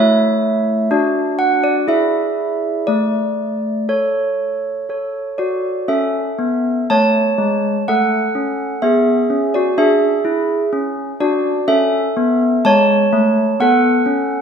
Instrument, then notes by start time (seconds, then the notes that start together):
handbells
Already playing: A3 E4 C#5 E5
0.91 D4 F#4 D5
1.39 F#5
1.64 D5
1.88 E4 G#4 D5 E5
2.87 A3 D5
3.89 A4 C#5
4.89 A4 C#5
5.38 F#4 D5
5.88 C#4 A4 E5
6.39 B3
6.90 A3 C#5 A5
7.38 G#3
7.88 A3 A4 F#5
8.35 C#4
8.82 B3 G#4 E5
9.30 C#4
9.54 F#4 D5
9.78 D4 G#4 E5
10.25 E4
10.73 C#4
11.20 D4 F#4 D5
11.68 C#4 A4 E5
12.17 B3
12.65 G#3 C#5 A5
13.13 A3
13.60 B3 A4 F#5
14.06 C#4